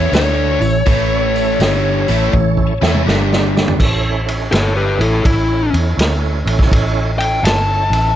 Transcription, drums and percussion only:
0.13 snare loud
0.13 open hi-hat medium
0.62 open hi-hat soft
0.86 kick loud
0.86 open hi-hat medium
1.36 open hi-hat soft
1.60 snare loud
1.60 open hi-hat medium
2.08 open hi-hat soft
2.33 kick medium
2.57 kick medium
2.83 snare medium
2.94 mid tom medium
3.08 snare medium
3.33 snare medium
3.57 snare medium
3.68 floor tom medium
3.80 kick loud
3.80 crash loud
4.28 ride medium
4.52 snare loud
4.52 ride medium
5.01 ride medium
5.25 kick loud
5.25 ride medium
5.74 ride medium
5.99 snare loud
5.99 ride medium
6.47 ride medium
6.59 kick medium
6.59 snare soft
6.72 kick loud
6.72 ride loud
7.20 ride medium
7.45 snare loud
7.45 ride medium
7.93 ride medium

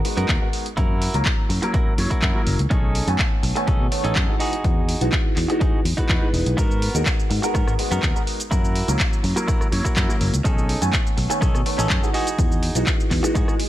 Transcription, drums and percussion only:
0.05 open hi-hat loud
0.17 closed hi-hat medium
0.29 kick loud
0.29 clap loud
0.29 closed hi-hat medium
0.53 open hi-hat loud
0.66 closed hi-hat medium
0.77 kick loud
0.77 closed hi-hat medium
1.02 open hi-hat loud
1.14 closed hi-hat medium
1.25 kick loud
1.25 clap loud
1.25 closed hi-hat medium
1.50 open hi-hat loud
1.63 closed hi-hat medium
1.74 kick loud
1.74 closed hi-hat soft
1.98 open hi-hat loud
2.11 kick medium
2.11 closed hi-hat medium
2.22 kick loud
2.22 clap loud
2.22 closed hi-hat medium
2.47 open hi-hat loud
2.59 closed hi-hat medium
2.71 kick loud
2.71 closed hi-hat medium
2.95 open hi-hat loud
3.08 closed hi-hat medium
3.19 kick loud
3.19 clap loud
3.19 closed hi-hat medium
3.43 open hi-hat loud
3.56 closed hi-hat medium
3.68 kick loud
3.68 closed hi-hat soft
3.92 open hi-hat loud
4.04 closed hi-hat medium
4.16 kick loud
4.16 clap loud
4.16 closed hi-hat medium
4.40 open hi-hat loud
4.53 closed hi-hat medium
4.64 kick loud
4.64 closed hi-hat soft
4.89 open hi-hat loud
5.01 closed hi-hat medium
5.12 kick loud
5.12 clap loud
5.12 closed hi-hat medium
5.36 clap soft
5.36 open hi-hat loud
5.50 closed hi-hat medium
5.61 kick loud
5.61 closed hi-hat soft
5.85 open hi-hat loud
5.98 kick medium
5.98 closed hi-hat medium
6.09 kick loud
6.09 clap loud
6.09 closed hi-hat soft
6.34 open hi-hat loud
6.46 closed hi-hat medium
6.58 kick loud
6.58 closed hi-hat medium
6.58 cabasa medium
6.71 cabasa soft
6.82 open hi-hat loud
6.95 closed hi-hat medium
6.95 cabasa medium
7.06 kick loud
7.06 clap loud
7.06 closed hi-hat soft
7.06 cabasa medium
7.20 cabasa soft
7.31 open hi-hat loud
7.43 closed hi-hat medium
7.43 cabasa medium
7.55 kick loud
7.55 cross-stick medium
7.55 closed hi-hat soft
7.55 cabasa medium
7.67 cross-stick medium
7.67 cabasa soft
7.79 open hi-hat loud
7.92 closed hi-hat medium
7.92 cabasa medium
8.03 kick loud
8.03 clap loud
8.03 closed hi-hat soft
8.03 cabasa medium
8.16 cabasa soft
8.27 open hi-hat loud
8.40 closed hi-hat medium
8.40 cabasa medium
8.51 kick loud
8.51 closed hi-hat medium
8.51 cabasa medium
8.65 cabasa soft
8.75 open hi-hat loud
8.88 closed hi-hat medium
8.88 cabasa medium
8.99 kick loud
8.99 clap loud
8.99 closed hi-hat medium
8.99 cabasa medium
9.13 cabasa soft
9.24 open hi-hat medium
9.37 closed hi-hat medium
9.37 cabasa medium
9.48 kick loud
9.48 cross-stick medium
9.48 closed hi-hat soft
9.48 cabasa medium
9.61 cross-stick medium
9.61 cabasa soft
9.72 open hi-hat loud
9.85 kick medium
9.85 closed hi-hat medium
9.85 cabasa medium
9.96 kick loud
9.96 clap loud
9.96 closed hi-hat medium
9.96 cabasa medium
10.10 cabasa soft
10.21 open hi-hat loud
10.34 closed hi-hat medium
10.34 cabasa medium
10.45 kick loud
10.45 closed hi-hat medium
10.45 cabasa medium
10.58 cabasa soft
10.69 open hi-hat loud
10.82 closed hi-hat medium
10.82 cabasa medium
10.93 kick loud
10.93 clap loud
10.93 closed hi-hat medium
10.93 cabasa medium
11.07 cabasa soft
11.18 open hi-hat loud
11.30 closed hi-hat medium
11.30 cabasa medium
11.42 kick loud
11.42 cross-stick medium
11.42 closed hi-hat medium
11.42 cabasa medium
11.55 cross-stick medium
11.55 cabasa soft
11.66 open hi-hat loud
11.79 closed hi-hat medium
11.79 cabasa medium
11.90 kick loud
11.90 clap loud
11.90 closed hi-hat medium
11.90 cabasa medium
12.04 cabasa soft
12.14 open hi-hat loud
12.27 closed hi-hat medium
12.27 cabasa medium
12.38 kick loud
12.38 closed hi-hat medium
12.38 cabasa medium
12.52 cabasa soft
12.63 open hi-hat loud
12.75 closed hi-hat medium
12.75 cabasa medium
12.87 kick loud
12.87 clap loud
12.87 closed hi-hat medium
12.87 cabasa medium
13.00 cabasa soft
13.11 kick medium
13.11 clap soft
13.11 open hi-hat loud
13.24 closed hi-hat medium
13.24 cabasa medium
13.35 kick loud
13.35 cross-stick medium
13.35 closed hi-hat medium
13.35 cabasa medium
13.48 cross-stick medium
13.48 cabasa soft
13.60 open hi-hat loud

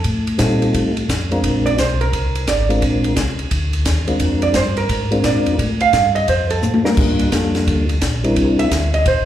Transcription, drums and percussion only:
0.04 kick soft
0.04 ride medium
0.27 ride soft
0.39 kick soft
0.39 snare medium
0.39 hi-hat pedal soft
0.39 ride medium
0.62 ride soft
0.74 kick soft
0.74 ride medium
0.97 ride soft
1.09 kick soft
1.09 snare medium
1.09 hi-hat pedal soft
1.09 ride medium
1.32 ride soft
1.44 kick soft
1.44 ride medium
1.67 ride soft
1.78 kick soft
1.78 snare medium
1.78 hi-hat pedal medium
1.78 ride medium
2.01 ride soft
2.13 kick soft
2.13 ride medium
2.35 ride soft
2.47 kick soft
2.47 snare medium
2.47 hi-hat pedal medium
2.47 ride medium
2.70 ride soft
2.82 kick soft
2.82 ride medium
3.04 ride soft
3.16 kick soft
3.16 snare medium
3.16 hi-hat pedal medium
3.16 ride medium
3.39 ride soft
3.51 kick soft
3.51 ride medium
3.73 ride soft
3.85 kick soft
3.85 snare medium
3.85 hi-hat pedal soft
3.85 ride medium
4.08 ride soft
4.20 kick soft
4.20 ride medium
4.42 ride soft
4.54 kick soft
4.54 snare medium
4.54 hi-hat pedal medium
4.54 ride medium
4.77 ride soft
4.89 kick soft
4.89 ride medium
5.12 ride soft
5.24 kick soft
5.24 snare medium
5.24 hi-hat pedal soft
5.24 ride medium
5.46 ride soft
5.59 kick soft
5.59 ride medium
5.80 ride soft
5.93 kick soft
5.93 snare medium
5.93 hi-hat pedal soft
5.93 ride medium
6.16 ride soft
6.28 kick soft
6.28 ride medium
6.50 ride soft
6.63 hi-hat pedal medium
6.63 high tom soft
6.74 high tom medium
6.85 snare medium
6.97 kick medium
6.97 crash medium
7.19 ride soft
7.32 kick soft
7.32 snare medium
7.32 hi-hat pedal medium
7.32 ride medium
7.55 snare soft
7.55 ride soft
7.67 kick soft
7.67 ride medium
7.89 ride soft
8.02 kick soft
8.02 snare medium
8.02 hi-hat pedal medium
8.02 ride medium
8.24 ride soft
8.36 kick soft
8.36 ride medium
8.59 ride medium
8.71 kick soft
8.71 snare medium
8.71 hi-hat pedal medium
8.71 ride medium
8.94 ride soft
9.06 kick soft
9.06 ride medium

